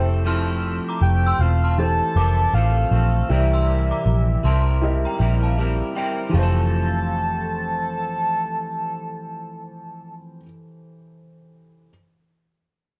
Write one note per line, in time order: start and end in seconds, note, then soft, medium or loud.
0.00 0.79 F1 medium
0.00 0.25 A3 medium
0.00 0.25 C4 medium
0.00 0.26 E4 medium
0.00 1.11 E4 medium
0.00 1.11 G4 medium
0.00 0.26 A4 medium
0.00 1.12 A4 medium
0.00 1.12 C5 medium
0.00 0.11 E5 medium
0.25 1.39 F3 medium
0.25 1.38 A3 medium
0.25 1.40 C4 medium
0.25 2.18 E4 medium
0.25 1.41 A4 medium
0.25 0.63 C6 medium
0.25 0.62 F6 medium
0.89 1.03 A#5 medium
0.89 1.02 D6 medium
1.02 1.32 F1 medium
1.02 1.42 G5 loud
1.26 1.41 C6 medium
1.26 1.40 E6 medium
1.39 2.00 E1 medium
1.39 2.15 A3 soft
1.39 2.16 C4 medium
1.39 2.17 A4 medium
1.39 1.78 F5 medium
1.64 1.78 A5 medium
1.64 1.78 C6 medium
1.78 2.89 E3 medium
1.78 2.89 G4 medium
1.78 2.89 A4 medium
1.78 2.90 C5 medium
1.78 2.56 A5 loud
2.16 2.46 F1 medium
2.16 2.54 C4 medium
2.16 2.55 E4 medium
2.16 2.56 A4 medium
2.16 2.74 A#4 medium
2.16 2.73 D6 medium
2.53 2.84 A1 medium
2.53 2.90 A3 medium
2.53 2.92 C4 medium
2.53 3.32 F5 loud
2.58 2.94 A4 medium
2.91 3.22 A#1 medium
2.91 3.30 A3 medium
2.91 3.30 C4 medium
2.96 3.32 A4 medium
3.29 3.91 C2 medium
3.29 4.44 C3 medium
3.29 4.50 E3 medium
3.29 4.42 G3 medium
3.29 4.45 C4 medium
3.29 4.41 E4 medium
3.29 4.46 E4 medium
3.29 4.41 G4 medium
3.29 4.41 A#4 medium
3.29 4.45 A#4 medium
3.29 4.42 D5 medium
3.29 5.58 E5 medium
3.53 3.68 C6 medium
3.53 3.67 E6 medium
3.91 4.06 A#5 medium
3.91 4.05 D6 medium
4.06 4.36 A#1 medium
4.43 5.05 C2 medium
4.43 5.18 G3 medium
4.43 5.20 C4 medium
4.43 5.21 E4 medium
4.43 5.21 A#4 medium
4.43 4.81 A5 medium
4.43 4.80 C6 medium
4.81 5.93 E4 medium
4.81 5.93 G4 medium
4.81 5.93 A#4 medium
4.81 4.91 D#5 medium
4.90 5.97 E5 medium
5.05 5.20 G5 medium
5.05 5.19 A#5 medium
5.19 5.81 A#1 medium
5.19 5.56 G3 medium
5.19 5.58 C4 medium
5.19 5.59 E4 medium
5.19 5.59 A#4 medium
5.43 5.58 F5 soft
5.43 5.57 A5 medium
5.58 5.94 G3 medium
5.58 5.95 C4 medium
5.58 5.96 E4 medium
5.58 5.98 A#4 medium
5.95 6.34 G3 medium
5.95 6.34 C4 medium
5.95 6.35 E4 medium
5.95 6.35 A#4 medium
5.95 6.19 E5 medium
5.95 6.18 G5 medium
6.29 10.35 E3 medium
6.29 10.41 F3 medium
6.29 10.39 G4 medium
6.34 10.40 F1 medium
6.34 10.45 A3 medium
6.34 10.47 C4 medium
6.34 10.42 A4 medium
6.34 8.59 F5 medium
6.34 10.14 A5 medium
6.39 10.53 A4 medium
6.39 10.45 C5 medium